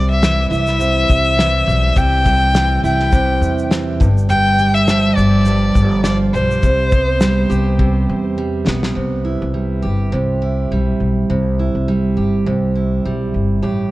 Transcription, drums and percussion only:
0.23 snare, shaker
0.53 shaker
0.67 snare, shaker
0.80 shaker
1.10 kick, shaker
1.39 snare, shaker
1.69 shaker
1.97 kick, shaker
2.25 kick, shaker
2.55 snare, shaker
2.85 shaker
3.00 snare
3.12 kick, shaker
3.42 shaker
3.58 shaker
3.71 snare, shaker
4.01 kick, shaker
4.18 shaker
4.30 shaker
4.58 shaker
4.75 shaker
4.88 snare, shaker
5.18 shaker
5.45 shaker
5.76 kick, shaker
6.04 snare, shaker
6.34 shaker
6.51 shaker
6.63 kick, shaker
6.91 kick, shaker
7.21 snare, shaker
7.51 shaker
7.79 kick
8.67 snare
8.83 snare

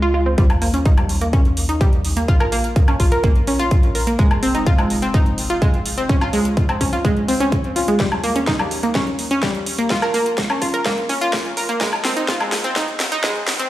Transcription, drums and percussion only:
0.38 kick, closed hi-hat
0.50 closed hi-hat, high woodblock
0.62 open hi-hat
0.74 closed hi-hat
0.85 kick, closed hi-hat
0.98 closed hi-hat, high woodblock
1.09 open hi-hat
1.21 closed hi-hat
1.33 kick, closed hi-hat
1.45 closed hi-hat
1.57 open hi-hat
1.69 closed hi-hat
1.81 kick, closed hi-hat
1.93 closed hi-hat
2.05 open hi-hat
2.17 closed hi-hat
2.28 kick, closed hi-hat
2.40 closed hi-hat, high woodblock
2.52 open hi-hat
2.64 closed hi-hat
2.76 kick, closed hi-hat
2.88 closed hi-hat, high woodblock
3.00 kick, open hi-hat
3.12 closed hi-hat
3.24 kick, closed hi-hat
3.36 closed hi-hat
3.47 open hi-hat
3.59 closed hi-hat
3.71 kick, closed hi-hat
3.83 closed hi-hat
3.95 open hi-hat
4.07 closed hi-hat
4.19 kick, closed hi-hat
4.31 closed hi-hat, high woodblock
4.43 open hi-hat
4.55 closed hi-hat
4.67 kick, closed hi-hat
4.79 closed hi-hat, high woodblock
4.90 open hi-hat
5.02 closed hi-hat
5.14 kick, closed hi-hat
5.26 closed hi-hat
5.38 open hi-hat
5.50 closed hi-hat
5.62 kick, closed hi-hat
5.74 closed hi-hat
5.86 open hi-hat
5.98 closed hi-hat
6.09 kick, closed hi-hat
6.21 closed hi-hat, high woodblock
6.33 open hi-hat
6.45 closed hi-hat
6.57 kick, closed hi-hat
6.69 closed hi-hat, high woodblock
6.81 kick, open hi-hat
6.93 closed hi-hat
7.05 kick, closed hi-hat
7.17 closed hi-hat
7.28 open hi-hat
7.40 closed hi-hat
7.52 kick, closed hi-hat
7.64 closed hi-hat
7.76 open hi-hat
7.88 closed hi-hat
8.00 kick, snare, closed hi-hat
8.12 closed hi-hat, high woodblock
8.24 open hi-hat
8.36 closed hi-hat
8.47 kick, snare, closed hi-hat
8.59 closed hi-hat, high woodblock
8.71 open hi-hat
8.83 closed hi-hat
8.95 kick, snare, closed hi-hat
9.07 closed hi-hat
9.19 open hi-hat
9.31 closed hi-hat
9.43 kick, snare, closed hi-hat
9.55 closed hi-hat
9.66 open hi-hat
9.78 closed hi-hat
9.90 kick, snare, closed hi-hat
10.02 closed hi-hat, high woodblock
10.14 open hi-hat
10.26 closed hi-hat
10.38 kick, snare, closed hi-hat
10.50 closed hi-hat, high woodblock
10.62 kick, open hi-hat
10.74 closed hi-hat
10.86 kick, snare, closed hi-hat
10.98 closed hi-hat
11.09 open hi-hat
11.21 closed hi-hat
11.33 kick, snare, closed hi-hat
11.45 closed hi-hat
11.57 open hi-hat
11.69 closed hi-hat
11.81 kick, snare, closed hi-hat
11.93 closed hi-hat, high woodblock
12.05 snare, open hi-hat
12.17 closed hi-hat
12.28 kick, snare, closed hi-hat
12.40 closed hi-hat, high woodblock
12.52 snare, open hi-hat
12.64 closed hi-hat
12.76 kick, snare, closed hi-hat
12.88 closed hi-hat
13.00 snare, open hi-hat
13.12 closed hi-hat
13.24 kick, snare, closed hi-hat
13.36 closed hi-hat
13.48 snare, open hi-hat
13.59 closed hi-hat

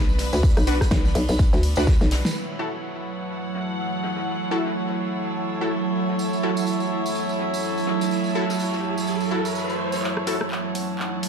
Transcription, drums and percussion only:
0.09 tambourine
0.18 snare, open hi-hat
0.33 snare, tambourine
0.43 kick, ride, tambourine
0.57 cross-stick, open hi-hat, tambourine
0.67 open hi-hat, ride
0.81 kick, cross-stick, snare, tambourine
0.91 kick, snare, ride, tambourine
1.05 snare, tambourine
1.15 open hi-hat, ride
1.29 tambourine
1.38 kick, snare, ride, tambourine
1.53 snare, ride, tambourine
1.63 open hi-hat, ride
1.76 tambourine
1.87 kick, snare, tambourine
2.01 snare, ride, tambourine
2.11 snare, open hi-hat, ride
2.25 snare, tambourine
2.35 crash, ride
2.59 snare, ride
2.73 ride
2.83 ride
3.07 ride
3.31 ride
3.54 snare, ride
3.69 ride
3.79 ride
4.02 snare, open hi-hat
4.17 snare
4.27 ride
4.51 ride
4.66 snare
4.75 ride
4.90 snare
5.00 ride
5.23 ride
5.47 ride
5.71 ride
5.95 ride
6.10 snare
6.19 ride, tambourine
6.33 tambourine
6.43 snare, ride
6.57 ride, tambourine
6.67 ride, tambourine
6.80 tambourine
6.91 ride
7.06 tambourine
7.15 ride, tambourine
7.29 tambourine
7.39 snare, ride
7.53 ride, tambourine
7.63 ride, tambourine
7.78 tambourine
7.87 snare, open hi-hat
8.01 snare, tambourine
8.11 ride, tambourine
8.24 tambourine
8.35 ride
8.49 snare, tambourine
8.59 ride, tambourine
8.73 snare, tambourine
8.83 ride
8.97 tambourine
9.07 ride, tambourine
9.20 tambourine
9.32 ride
9.45 tambourine
9.55 ride, tambourine
9.70 tambourine
9.78 ride
9.92 snare, tambourine
10.03 clap
10.17 cross-stick
10.27 open hi-hat
10.41 cross-stick
10.51 clap
10.75 open hi-hat
10.99 clap
11.23 open hi-hat

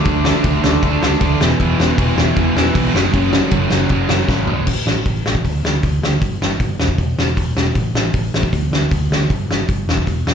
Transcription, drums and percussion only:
0.05 kick, crash
0.25 snare
0.44 kick, crash
0.64 snare
0.83 kick, crash
1.03 snare
1.21 kick, crash
1.41 snare
1.60 kick, crash
1.80 snare
1.98 kick, crash
2.18 snare
2.37 kick, crash
2.57 snare
2.75 kick, crash
2.96 snare
3.14 kick, crash
3.33 snare
3.51 kick, crash
3.71 snare
3.89 kick, crash
4.09 snare
4.29 kick, snare
4.47 floor tom
4.67 kick, crash
4.87 snare
5.06 kick, open hi-hat
5.26 snare
5.35 kick
5.45 kick, open hi-hat
5.65 snare
5.83 kick, open hi-hat
6.03 snare
6.22 kick, open hi-hat
6.42 snare
6.60 kick, open hi-hat
6.80 snare
6.89 kick
6.98 kick, open hi-hat
7.19 snare
7.37 kick, open hi-hat
7.57 snare
7.75 kick, open hi-hat
7.95 snare
8.14 kick, open hi-hat
8.34 snare
8.43 kick
8.53 kick, open hi-hat
8.73 snare
8.91 kick, open hi-hat
9.12 snare
9.30 kick, open hi-hat
9.51 snare
9.69 kick, open hi-hat
9.89 snare
9.97 kick
10.07 kick, open hi-hat
10.27 snare

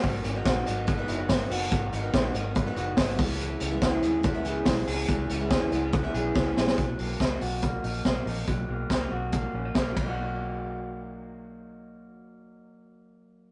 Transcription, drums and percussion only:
0.03 kick, open hi-hat
0.24 hi-hat pedal, open hi-hat
0.45 kick, snare, hi-hat pedal, open hi-hat
0.66 hi-hat pedal, open hi-hat
0.87 kick, hi-hat pedal, open hi-hat
1.08 hi-hat pedal, open hi-hat
1.29 kick, snare, hi-hat pedal, open hi-hat
1.51 hi-hat pedal, open hi-hat
1.72 kick, hi-hat pedal, open hi-hat
1.92 hi-hat pedal, open hi-hat
2.13 kick, snare, hi-hat pedal, open hi-hat
2.34 hi-hat pedal, open hi-hat
2.55 kick, hi-hat pedal, open hi-hat
2.76 hi-hat pedal, open hi-hat
2.97 kick, snare, hi-hat pedal, open hi-hat
3.19 kick, hi-hat pedal, open hi-hat
3.39 hi-hat pedal, open hi-hat
3.60 hi-hat pedal, open hi-hat
3.81 kick, snare, hi-hat pedal, open hi-hat
4.02 hi-hat pedal, open hi-hat
4.23 kick, hi-hat pedal, open hi-hat
4.45 hi-hat pedal, open hi-hat
4.65 kick, snare, hi-hat pedal, open hi-hat
4.87 hi-hat pedal, open hi-hat
5.08 kick, hi-hat pedal, open hi-hat
5.29 hi-hat pedal, open hi-hat
5.50 kick, snare, hi-hat pedal, open hi-hat
5.72 hi-hat pedal, open hi-hat
5.92 kick, hi-hat pedal, open hi-hat
6.14 hi-hat pedal, open hi-hat
6.36 kick, snare
6.57 snare
6.67 snare
6.78 kick, closed hi-hat
6.99 open hi-hat
7.20 kick, snare, closed hi-hat
7.41 open hi-hat
7.62 kick, closed hi-hat
7.84 open hi-hat
8.05 kick, snare, closed hi-hat
8.27 open hi-hat
8.48 kick, closed hi-hat
8.90 kick, snare, closed hi-hat
9.32 kick, closed hi-hat
9.75 kick, snare, closed hi-hat
9.97 kick, ride

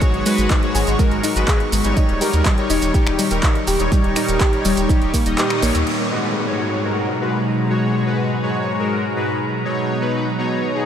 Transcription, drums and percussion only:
0.01 kick, closed hi-hat, maracas
0.14 closed hi-hat
0.26 open hi-hat, maracas
0.38 closed hi-hat, maracas
0.50 kick, clap, closed hi-hat, maracas
0.63 closed hi-hat
0.75 open hi-hat, maracas
0.87 closed hi-hat, maracas
0.99 kick, closed hi-hat, maracas
1.11 closed hi-hat
1.23 open hi-hat, maracas
1.36 closed hi-hat, maracas
1.48 kick, clap, closed hi-hat, maracas
1.60 closed hi-hat
1.72 open hi-hat, maracas
1.84 closed hi-hat, maracas
1.96 kick, closed hi-hat, maracas
2.09 closed hi-hat
2.21 open hi-hat, maracas
2.33 closed hi-hat, maracas
2.45 kick, clap, closed hi-hat, maracas
2.58 closed hi-hat
2.70 open hi-hat, maracas
2.82 closed hi-hat, maracas
2.94 kick, closed hi-hat, maracas
3.07 finger snap, closed hi-hat
3.19 open hi-hat, maracas
3.31 closed hi-hat, maracas
3.43 kick, clap, closed hi-hat, maracas
3.55 closed hi-hat
3.67 open hi-hat, maracas
3.79 closed hi-hat, maracas
3.92 kick, closed hi-hat, maracas
4.04 closed hi-hat
4.16 finger snap, open hi-hat, maracas
4.28 closed hi-hat, maracas
4.40 kick, clap, closed hi-hat, maracas
4.53 closed hi-hat
4.65 open hi-hat, maracas
4.77 closed hi-hat, maracas
4.89 kick, closed hi-hat, maracas
5.02 closed hi-hat
5.14 kick, open hi-hat, maracas
5.26 closed hi-hat, maracas
5.38 clap, closed hi-hat, maracas
5.50 finger snap, closed hi-hat
5.62 open hi-hat, maracas
5.75 closed hi-hat, maracas
5.87 crash

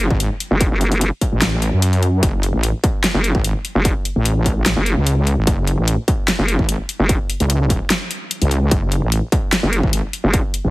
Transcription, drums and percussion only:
0.10 kick
0.20 closed hi-hat
0.40 closed hi-hat
0.61 kick, closed hi-hat
0.81 closed hi-hat
0.92 closed hi-hat
1.01 closed hi-hat
1.21 kick, closed hi-hat
1.42 snare, clap, closed hi-hat
1.62 closed hi-hat
1.82 closed hi-hat
1.93 closed hi-hat
2.03 closed hi-hat
2.23 kick, closed hi-hat
2.43 closed hi-hat
2.63 closed hi-hat
2.84 kick, closed hi-hat
3.04 snare, clap, closed hi-hat
3.24 closed hi-hat
3.35 kick
3.44 closed hi-hat
3.65 closed hi-hat
3.85 kick, closed hi-hat
4.05 closed hi-hat
4.25 closed hi-hat
4.46 kick, closed hi-hat
4.66 snare, clap, closed hi-hat
4.86 closed hi-hat
5.07 closed hi-hat
5.27 closed hi-hat
5.47 kick, closed hi-hat
5.67 closed hi-hat
5.88 closed hi-hat
6.08 kick, closed hi-hat
6.28 snare, clap, closed hi-hat
6.48 closed hi-hat
6.59 kick
6.69 closed hi-hat
6.89 closed hi-hat
7.09 kick, closed hi-hat
7.30 closed hi-hat
7.40 closed hi-hat
7.50 closed hi-hat
7.70 kick, closed hi-hat
7.90 snare, clap, closed hi-hat
8.11 closed hi-hat
8.31 closed hi-hat
8.42 closed hi-hat
8.51 closed hi-hat
8.71 kick, closed hi-hat
8.92 closed hi-hat
9.12 closed hi-hat
9.32 kick, closed hi-hat
9.53 snare, clap, closed hi-hat
9.73 closed hi-hat
9.83 kick
9.93 closed hi-hat
10.13 closed hi-hat
10.34 kick, closed hi-hat
10.54 closed hi-hat

